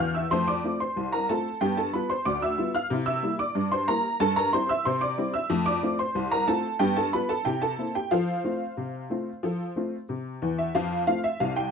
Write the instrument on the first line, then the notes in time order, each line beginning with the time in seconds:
honky-tonk piano
Already playing: E3 F6
0.00 E2 F5
0.15 E5 E6
0.31 F2 A3 C5 C6
0.48 D5 D6
0.64 A3 C4 F4
0.80 C5 C6
0.96 C2
1.12 A#4 A#5
1.29 A3 C4 F4 A4 A5
1.61 G2 B3 G4 G5
1.77 A4 A5
1.93 G3 B3 F4 B4 B5
2.10 C5 C6
2.25 D2 D5 D6
2.42 E5 E6
2.58 G3 B3 F4
2.75 F5 F6
2.90 C3 E4
3.06 E5 E6
3.23 G3 A#3 E4
3.39 D5 D6
3.55 G2
3.72 C5 C6
3.88 G3 A#3 E4 A#4 A#5
4.20 G2 A4 A5
4.36 A#4 A#5
4.53 G3 C4 E4 C5 C6
4.69 E5 E6
4.85 C3 C5 C6
5.01 D5 D6
5.18 G3 C4 E4
5.34 E5 E6
5.50 F2 A3
5.66 D5 D6
5.83 A3 C4 F4
5.99 C5 C6
6.15 C2
6.31 A#4 A#5
6.47 A3 C4 F4 A4 A5
6.79 G2 B3 G4 G5
6.97 A4 A5
7.13 G3 B3 F4 B4 B5
7.29 A4 A5
7.45 C3 E4 G4 G5
7.62 A4 A5
7.78 A#3 C4 E4
7.95 G4 G5
8.11 F3 F4 A4 C5 F5
8.44 A3 C4 F4
8.77 C3
9.10 A3 C4 F4
9.43 F3 A4
9.76 A3 C4 F4
10.09 C3
10.42 E2 E3
10.58 E5
10.75 F2 F3 F5
11.07 A3 C4 F4 F5
11.24 E5
11.40 C2 C3 F5
11.56 G5